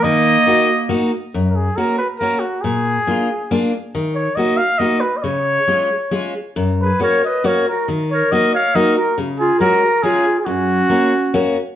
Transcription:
<<
  \new Staff \with { instrumentName = "Trumpet" } { \time 3/4 \key ees \minor \tempo 4 = 138 ees''2~ ees''8 r8 | \key fis \major r16. ais'32 gis'8 ais'8 b'8 ais'8 fis'8 | gis'2~ gis'8 r8 | r8 cis''8 dis''8 eis''8 \tuplet 3/2 { dis''8. b'8 dis''16 } |
cis''2~ cis''8 r8 | r8 b'8 cis''8 dis''8 cis''8 ais'8 | r8 cis''8 dis''8 eis''8 dis''8 ais'8 | r8 gis'8 ais'4 \tuplet 3/2 { gis'4~ gis'16 gis'16 } |
fis'2~ fis'8 r8 | }
  \new Staff \with { instrumentName = "Clarinet" } { \time 3/4 \key ees \minor bes2~ bes8 r8 | \key fis \major r2. | r2. | r2. |
r2. | r8 gis'8 ais'8 b'8 ais'8 fis'8 | r8 ais'8 ais'8 cis''8 ais'8 fis'8 | r8 eis'8 fis'4 \tuplet 3/2 { eis'4~ eis'16 eis'16 } |
cis'2~ cis'8 r8 | }
  \new Staff \with { instrumentName = "Steel-string acoustic guitar" } { \time 3/4 \key ees \minor ees4 <bes ees' ges'>8 r8 <bes ees' ges'>8 r8 | \key fis \major fis,4 <ais cis' fis'>8 r8 <ais cis' fis'>8 r8 | ais,4 <ais d' eis'>8 r8 <ais d' eis'>8 r8 | dis4 <ais dis' fis'>8 r8 <ais dis' fis'>8 r8 |
cis4 <gis cis' eis'>8 r8 <gis cis' eis'>8 r8 | fis,4 <ais cis' fis'>8 r8 <ais cis' fis'>8 r8 | dis4 <ais dis' fis'>8 r8 <ais dis' fis'>8 r8 | cis4 <gis cis' fis'>8 r8 <gis cis' eis'>8 r8 |
fis,4 <ais cis' fis'>8 r8 <ais cis' fis'>8 r8 | }
>>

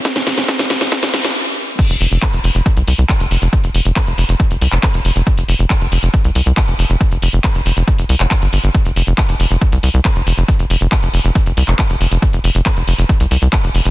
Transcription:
<<
  \new Staff \with { instrumentName = "Analog synth bass" } { \clef bass \time 4/4 \key c \phrygian \tempo 4 = 138 r16 f,,16 f,,16 f,,16 r16 f,,16 f,,16 f,,16 r16 f,,16 c,16 f,,16 r4 | r16 f,,16 f,,16 f,,16 r16 f,,16 f,,16 f,,16 r16 c,16 c,16 c,16 r16 f,,16 f,,16 f,,16 | r16 f,,16 f,,16 f,,16 r16 f,,16 f,,16 f,,16 r16 f,,16 c,16 f,,16 r16 f,,16 f,,16 f,,16 | r16 f,,16 f,,16 f,,16 r16 f,,16 f,,16 f,,16 r16 c,16 c,16 c,16 r16 f,,16 f,,16 f,,16 |
r16 f,,16 f,,16 f,,16 r16 f,,16 f,,16 f,,16 r16 f,,16 c,16 f,,16 r16 g,,16 g,,16 g,,16 | r16 f,,16 f,,16 f,,16 r16 f,,16 f,,16 f,,16 r16 c,16 c,16 c,16 r16 f,,16 f,,16 f,,16 | r16 f,,16 f,,16 f,,16 r16 f,,16 f,,16 f,,16 r16 f,,16 c,16 f,,16 r16 f,,16 f,,16 f,,16 | r16 f,,16 f,,16 f,,16 r16 f,,16 f,,16 f,,16 r16 c,16 c,16 c,16 r16 f,,16 f,,16 f,,16 | }
  \new DrumStaff \with { instrumentName = "Drums" } \drummode { \time 4/4 <hh bd sn>16 <hh sn>16 <hho sn>16 sn16 <hh bd sn>16 <hh sn>16 <hho sn>16 <hh sn>16 <hh bd sn>16 <hh sn>16 <hho sn>16 <hh sn>16 r4 | <cymc hh bd>16 hh16 hho16 hh16 <hc hh bd>16 hh16 hho16 hh16 <hh bd>16 hh16 hho16 hh16 <hc hh bd>16 hh16 hho16 hh16 | <hh bd>16 hh16 hho16 hh16 <hc hh bd>16 hh16 hho16 hh16 <hh bd>16 hh16 hho16 <hc hh>16 <hc hh bd>16 hh16 hho16 hh16 | <hh bd>16 hh16 hho16 hh16 <hc hh bd>16 hh16 hho16 hh16 <hh bd>16 hh16 hho16 hh16 <hc hh bd>16 hh16 hho16 hh16 |
<hh bd>16 hh16 hho16 hh16 <hc hh bd>16 hh16 hho16 hh16 <hh bd>16 hh16 hho16 hc16 <hc hh bd>16 hh16 hho16 hh16 | <hh bd>16 hh16 hho16 hh16 <hc hh bd>16 hh16 hho16 hh16 <hh bd>16 hh16 hho16 hh16 <hc hh bd>16 hh16 hho16 hh16 | <hh bd>16 hh16 hho16 hh16 <hc hh bd>16 hh16 hho16 hh16 <hh bd>16 hh16 hho16 <hc hh>16 <hc hh bd>16 hh16 hho16 hh16 | <hh bd>16 hh16 hho16 hh16 <hc hh bd>16 hh16 hho16 hh16 <hh bd>16 hh16 hho16 hh16 <hc hh bd>16 hh16 hho16 hh16 | }
>>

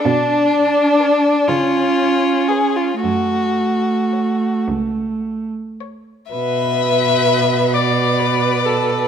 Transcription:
<<
  \new Staff \with { instrumentName = "Violin" } { \time 6/8 \key fis \minor \tempo 4. = 41 r4 b'8 r4 b'8 | r4 cis''8 r4 cis''8 | \key b \minor e''4. d''4. | }
  \new Staff \with { instrumentName = "Viola" } { \time 6/8 \key fis \minor d'4. cis'4. | a2~ a16 r8. | \key b \minor b'4. d''8 b'8 a'8 | }
  \new Staff \with { instrumentName = "Violin" } { \time 6/8 \key fis \minor d'4. eis'4 gis'16 eis'16 | fis'4. r4. | \key b \minor b'2. | }
  \new Staff \with { instrumentName = "Cello" } { \clef bass \time 6/8 \key fis \minor b,4. cis4. | fis,4. cis,4. | \key b \minor b,2. | }
>>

